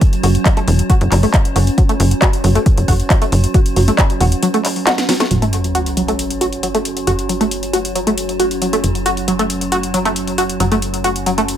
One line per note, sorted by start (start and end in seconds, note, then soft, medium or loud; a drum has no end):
0.00 5.30 F#3 medium
0.00 5.30 C#4 medium
0.00 kick loud
0.00 closed hi-hat medium
0.13 closed hi-hat soft
0.23 0.38 F#1 medium
0.23 0.28 F#4 medium
0.23 open hi-hat loud
0.35 closed hi-hat medium
0.46 0.50 F#3 medium
0.46 kick loud
0.46 clap loud
0.46 closed hi-hat medium
0.57 0.60 A3 loud
0.57 closed hi-hat medium
0.68 0.82 E1 medium
0.68 open hi-hat loud
0.79 closed hi-hat medium
0.90 0.94 F#4 medium
0.90 kick loud
0.90 closed hi-hat medium
1.01 1.08 F#1 loud
1.01 closed hi-hat soft
1.12 1.26 F#1 loud
1.12 1.16 F#3 medium
1.12 clap medium
1.12 open hi-hat loud
1.23 1.26 A3 loud
1.23 open hi-hat medium
1.34 kick loud
1.34 clap loud
1.34 closed hi-hat medium
1.45 closed hi-hat soft
1.56 1.70 F#1 medium
1.56 1.60 F#4 medium
1.56 open hi-hat loud
1.67 closed hi-hat medium
1.78 1.82 F#3 medium
1.78 kick loud
1.78 closed hi-hat medium
1.89 1.92 A3 loud
1.89 closed hi-hat medium
2.00 2.14 F#1 loud
2.00 open hi-hat loud
2.11 closed hi-hat medium
2.22 2.27 F#4 medium
2.22 kick loud
2.22 clap loud
2.22 closed hi-hat medium
2.33 closed hi-hat medium
2.44 2.59 F#1 loud
2.44 2.49 F#3 medium
2.44 open hi-hat loud
2.55 2.58 A3 loud
2.55 closed hi-hat medium
2.66 kick loud
2.66 closed hi-hat medium
2.78 2.84 F#1 medium
2.78 closed hi-hat soft
2.88 3.03 F#1 medium
2.88 2.93 F#4 medium
2.88 kick medium
2.88 open hi-hat medium
3.00 closed hi-hat soft
3.10 3.15 F#3 medium
3.10 kick loud
3.10 clap loud
3.10 closed hi-hat medium
3.22 3.24 A3 loud
3.22 closed hi-hat medium
3.32 3.47 F#1 loud
3.32 open hi-hat loud
3.44 closed hi-hat medium
3.54 3.59 F#4 medium
3.54 kick loud
3.54 closed hi-hat medium
3.66 closed hi-hat medium
3.76 3.91 F#1 medium
3.76 3.81 F#3 medium
3.76 open hi-hat loud
3.88 3.90 A3 loud
3.88 closed hi-hat medium
3.98 kick loud
3.98 clap loud
3.98 closed hi-hat medium
4.10 closed hi-hat medium
4.21 4.35 E1 medium
4.21 4.25 F#4 medium
4.21 open hi-hat loud
4.32 closed hi-hat medium
4.43 4.47 F#3 medium
4.43 closed hi-hat medium
4.54 4.57 A3 loud
4.54 closed hi-hat medium
4.65 clap medium
4.65 open hi-hat loud
4.76 open hi-hat medium
4.87 4.91 F#4 medium
4.87 snare medium
4.87 clap loud
4.87 closed hi-hat medium
4.98 snare medium
4.98 closed hi-hat medium
5.09 5.13 F#3 medium
5.09 snare medium
5.09 open hi-hat loud
5.20 5.23 A3 loud
5.20 snare medium
5.20 closed hi-hat medium
5.31 7.05 F#1 medium
5.31 5.35 F#3 medium
5.31 11.57 F#3 medium
5.31 11.57 C#4 medium
5.31 closed hi-hat medium
5.31 sub drop medium
5.42 5.45 A3 loud
5.42 closed hi-hat soft
5.53 closed hi-hat medium
5.64 closed hi-hat medium
5.75 5.80 F#4 medium
5.75 closed hi-hat medium
5.86 closed hi-hat medium
5.97 6.02 F#3 medium
5.97 closed hi-hat medium
6.08 6.11 A3 medium
6.08 closed hi-hat medium
6.19 closed hi-hat medium
6.30 closed hi-hat medium
6.41 6.46 F#4 medium
6.41 closed hi-hat medium
6.53 closed hi-hat medium
6.63 6.68 F#3 medium
6.63 closed hi-hat medium
6.75 6.77 A3 loud
6.75 closed hi-hat medium
6.85 closed hi-hat medium
6.97 closed hi-hat medium
7.07 8.82 F#1 medium
7.07 7.12 F#4 medium
7.07 closed hi-hat medium
7.19 closed hi-hat medium
7.29 7.34 F#3 medium
7.29 closed hi-hat medium
7.41 7.43 A3 loud
7.41 closed hi-hat medium
7.51 closed hi-hat medium
7.63 closed hi-hat medium
7.73 7.78 F#4 medium
7.73 closed hi-hat medium
7.85 closed hi-hat medium
7.95 8.00 F#3 medium
7.95 closed hi-hat medium
8.07 8.09 A3 loud
8.07 closed hi-hat medium
8.18 closed hi-hat medium
8.29 closed hi-hat medium
8.40 8.44 F#4 medium
8.40 closed hi-hat medium
8.51 closed hi-hat medium
8.62 8.66 F#3 medium
8.62 closed hi-hat medium
8.73 8.76 A3 loud
8.73 closed hi-hat medium
8.84 10.58 F#1 medium
8.84 closed hi-hat medium
8.95 closed hi-hat soft
9.06 9.10 F#4 medium
9.06 closed hi-hat medium
9.17 closed hi-hat medium
9.28 9.32 F#3 medium
9.28 closed hi-hat medium
9.39 9.42 A3 loud
9.39 closed hi-hat medium
9.50 closed hi-hat medium
9.61 closed hi-hat medium
9.72 9.77 F#4 medium
9.72 closed hi-hat medium
9.83 closed hi-hat medium
9.94 9.99 F#3 medium
9.94 closed hi-hat medium
10.05 10.08 A3 loud
10.05 closed hi-hat medium
10.16 closed hi-hat medium
10.27 closed hi-hat medium
10.38 10.43 F#4 medium
10.38 closed hi-hat medium
10.50 closed hi-hat medium
10.60 11.57 F#1 medium
10.60 10.65 F#3 medium
10.60 closed hi-hat medium
10.72 10.74 A3 loud
10.72 closed hi-hat soft
10.82 closed hi-hat medium
10.94 closed hi-hat medium
11.04 11.09 F#4 medium
11.04 closed hi-hat medium
11.16 closed hi-hat medium
11.26 11.31 F#3 medium
11.26 closed hi-hat medium
11.38 11.40 A3 loud
11.38 closed hi-hat soft
11.48 closed hi-hat medium